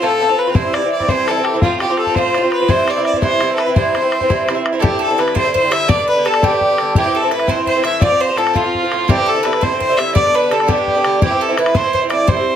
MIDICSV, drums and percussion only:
0, 0, Header, 1, 2, 480
1, 0, Start_track
1, 0, Key_signature, 0, "major"
1, 0, Tempo, 355240
1, 749, Time_signature, 6, 3, 24, 8
1, 16967, End_track
2, 0, Start_track
2, 0, Title_t, "Bodhran"
2, 742, Note_on_c, 9, 64, 99
2, 877, Note_off_c, 9, 64, 0
2, 1000, Note_on_c, 9, 64, 71
2, 1135, Note_off_c, 9, 64, 0
2, 1352, Note_on_c, 9, 64, 23
2, 1464, Note_off_c, 9, 64, 0
2, 1464, Note_on_c, 9, 64, 72
2, 1599, Note_off_c, 9, 64, 0
2, 1726, Note_on_c, 9, 64, 58
2, 1861, Note_off_c, 9, 64, 0
2, 1955, Note_on_c, 9, 64, 60
2, 2090, Note_off_c, 9, 64, 0
2, 2185, Note_on_c, 9, 64, 71
2, 2320, Note_off_c, 9, 64, 0
2, 2437, Note_on_c, 9, 64, 62
2, 2572, Note_off_c, 9, 64, 0
2, 2668, Note_on_c, 9, 64, 41
2, 2788, Note_off_c, 9, 64, 0
2, 2788, Note_on_c, 9, 64, 18
2, 2914, Note_off_c, 9, 64, 0
2, 2914, Note_on_c, 9, 64, 64
2, 3049, Note_off_c, 9, 64, 0
2, 3168, Note_on_c, 9, 64, 52
2, 3303, Note_off_c, 9, 64, 0
2, 3404, Note_on_c, 9, 64, 47
2, 3539, Note_off_c, 9, 64, 0
2, 3630, Note_on_c, 9, 64, 66
2, 3765, Note_off_c, 9, 64, 0
2, 3886, Note_on_c, 9, 64, 55
2, 4021, Note_off_c, 9, 64, 0
2, 4122, Note_on_c, 9, 64, 41
2, 4232, Note_off_c, 9, 64, 0
2, 4232, Note_on_c, 9, 64, 19
2, 4352, Note_off_c, 9, 64, 0
2, 4352, Note_on_c, 9, 64, 71
2, 4487, Note_off_c, 9, 64, 0
2, 4602, Note_on_c, 9, 64, 55
2, 4737, Note_off_c, 9, 64, 0
2, 4840, Note_on_c, 9, 64, 59
2, 4975, Note_off_c, 9, 64, 0
2, 5081, Note_on_c, 9, 64, 82
2, 5216, Note_off_c, 9, 64, 0
2, 5335, Note_on_c, 9, 64, 63
2, 5470, Note_off_c, 9, 64, 0
2, 5568, Note_on_c, 9, 64, 53
2, 5684, Note_off_c, 9, 64, 0
2, 5684, Note_on_c, 9, 64, 23
2, 5810, Note_off_c, 9, 64, 0
2, 5810, Note_on_c, 9, 64, 81
2, 5945, Note_off_c, 9, 64, 0
2, 6061, Note_on_c, 9, 64, 67
2, 6196, Note_off_c, 9, 64, 0
2, 6293, Note_on_c, 9, 64, 73
2, 6428, Note_off_c, 9, 64, 0
2, 6534, Note_on_c, 9, 64, 81
2, 6669, Note_off_c, 9, 64, 0
2, 7014, Note_on_c, 9, 64, 51
2, 7130, Note_off_c, 9, 64, 0
2, 7130, Note_on_c, 9, 64, 52
2, 7239, Note_off_c, 9, 64, 0
2, 7239, Note_on_c, 9, 64, 78
2, 7374, Note_off_c, 9, 64, 0
2, 7499, Note_on_c, 9, 64, 27
2, 7635, Note_off_c, 9, 64, 0
2, 7727, Note_on_c, 9, 64, 69
2, 7862, Note_off_c, 9, 64, 0
2, 7961, Note_on_c, 9, 64, 94
2, 8096, Note_off_c, 9, 64, 0
2, 8455, Note_on_c, 9, 64, 53
2, 8564, Note_off_c, 9, 64, 0
2, 8564, Note_on_c, 9, 64, 63
2, 8686, Note_off_c, 9, 64, 0
2, 8686, Note_on_c, 9, 64, 86
2, 8821, Note_off_c, 9, 64, 0
2, 8929, Note_on_c, 9, 64, 26
2, 9064, Note_off_c, 9, 64, 0
2, 9166, Note_on_c, 9, 64, 59
2, 9301, Note_off_c, 9, 64, 0
2, 9392, Note_on_c, 9, 64, 88
2, 9527, Note_off_c, 9, 64, 0
2, 9880, Note_on_c, 9, 64, 53
2, 9992, Note_off_c, 9, 64, 0
2, 9992, Note_on_c, 9, 64, 45
2, 10105, Note_off_c, 9, 64, 0
2, 10105, Note_on_c, 9, 64, 65
2, 10240, Note_off_c, 9, 64, 0
2, 10357, Note_on_c, 9, 64, 22
2, 10492, Note_off_c, 9, 64, 0
2, 10589, Note_on_c, 9, 64, 58
2, 10724, Note_off_c, 9, 64, 0
2, 10829, Note_on_c, 9, 64, 78
2, 10964, Note_off_c, 9, 64, 0
2, 11315, Note_on_c, 9, 64, 42
2, 11441, Note_off_c, 9, 64, 0
2, 11441, Note_on_c, 9, 64, 51
2, 11556, Note_off_c, 9, 64, 0
2, 11556, Note_on_c, 9, 64, 65
2, 11691, Note_off_c, 9, 64, 0
2, 11816, Note_on_c, 9, 64, 23
2, 11951, Note_off_c, 9, 64, 0
2, 12048, Note_on_c, 9, 64, 56
2, 12183, Note_off_c, 9, 64, 0
2, 12279, Note_on_c, 9, 64, 79
2, 12415, Note_off_c, 9, 64, 0
2, 12771, Note_on_c, 9, 64, 47
2, 12877, Note_off_c, 9, 64, 0
2, 12877, Note_on_c, 9, 64, 54
2, 13004, Note_off_c, 9, 64, 0
2, 13004, Note_on_c, 9, 64, 72
2, 13140, Note_off_c, 9, 64, 0
2, 13252, Note_on_c, 9, 64, 22
2, 13387, Note_off_c, 9, 64, 0
2, 13493, Note_on_c, 9, 64, 59
2, 13628, Note_off_c, 9, 64, 0
2, 13722, Note_on_c, 9, 64, 77
2, 13857, Note_off_c, 9, 64, 0
2, 14206, Note_on_c, 9, 64, 50
2, 14326, Note_off_c, 9, 64, 0
2, 14326, Note_on_c, 9, 64, 49
2, 14439, Note_off_c, 9, 64, 0
2, 14439, Note_on_c, 9, 64, 81
2, 14574, Note_off_c, 9, 64, 0
2, 14692, Note_on_c, 9, 64, 25
2, 14828, Note_off_c, 9, 64, 0
2, 14923, Note_on_c, 9, 64, 61
2, 15059, Note_off_c, 9, 64, 0
2, 15158, Note_on_c, 9, 64, 79
2, 15293, Note_off_c, 9, 64, 0
2, 15640, Note_on_c, 9, 64, 60
2, 15758, Note_off_c, 9, 64, 0
2, 15758, Note_on_c, 9, 64, 60
2, 15871, Note_off_c, 9, 64, 0
2, 15871, Note_on_c, 9, 64, 84
2, 16006, Note_off_c, 9, 64, 0
2, 16135, Note_on_c, 9, 64, 25
2, 16270, Note_off_c, 9, 64, 0
2, 16355, Note_on_c, 9, 64, 65
2, 16490, Note_off_c, 9, 64, 0
2, 16593, Note_on_c, 9, 64, 87
2, 16728, Note_off_c, 9, 64, 0
2, 16967, End_track
0, 0, End_of_file